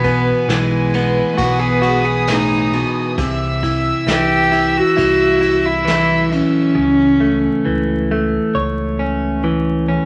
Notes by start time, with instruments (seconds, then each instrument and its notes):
Already playing: fingered electric bass B1, clean electric guitar B2 E3, cello B3, harp C#4, string section B4 G#5
0.04 harp B3, clean electric guitar B3, kick, ride
0.48 fingered electric bass B1, clean electric guitar E3, snare, ride
0.52 cello G#3
0.94 clean electric guitar B3, ride
1.37 fingered electric bass B1, clean electric guitar F#4, string section D#6, kick, ride
1.42 cello B3
1.60 clean electric guitar G#4
1.82 harp G#3, clean electric guitar F#4, ride
2.05 clean electric guitar G#4
2.27 clean electric guitar A2, snare, ride
2.33 cello D#4
2.73 clean electric guitar B2, ride
3.16 fingered electric bass C2, clean electric guitar C3, string section E5 E6, kick, ride
3.63 clean electric guitar E4, kick, ride
4.06 fingered electric bass C2, clean electric guitar E3, snare, ride
4.11 cello G4
4.52 harp B3, clean electric guitar E4, ride
4.77 cello F#4
4.96 fingered electric bass C2, harp G3, clean electric guitar E4, kick, ride
5.41 clean electric guitar E4, ride
5.66 cello E4
5.85 clean electric guitar E3, harp F#3, snare, ride
6.13 harp A3
6.32 cello C#4, ride
6.75 fingered electric bass C#2, clean electric guitar C#3
7.20 clean electric guitar A3
7.65 fingered electric bass C#2, clean electric guitar E3
8.11 clean electric guitar A3
8.55 fingered electric bass C#2, clean electric guitar C#5
8.99 clean electric guitar C#4
9.44 clean electric guitar E3
9.88 harp E3, clean electric guitar C#4